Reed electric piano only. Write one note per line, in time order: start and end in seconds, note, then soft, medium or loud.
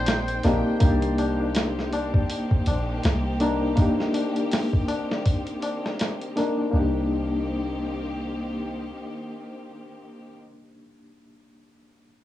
0.00 0.39 A#3 medium
0.00 0.40 C4 medium
0.00 0.41 D#4 medium
0.00 0.42 G4 medium
0.45 0.77 A#3 medium
0.45 0.78 C4 medium
0.45 0.78 D#4 medium
0.45 0.79 G4 loud
0.80 3.36 A#3 medium
0.80 3.37 D4 medium
0.80 3.37 D#4 medium
0.85 3.38 G4 medium
3.40 3.73 A#3 medium
3.40 3.74 D4 medium
3.40 3.74 D#4 medium
3.40 3.75 A#4 medium
3.76 6.32 A#3 medium
3.76 6.33 D4 medium
3.76 6.34 D#4 medium
3.82 6.35 G4 medium
6.36 6.69 A#3 medium
6.36 6.70 D4 medium
6.36 6.70 D#4 medium
6.36 6.71 A#4 medium
6.71 10.35 A#3 medium
6.71 10.37 D4 medium
6.76 10.40 D#4 medium
6.76 10.43 G4 medium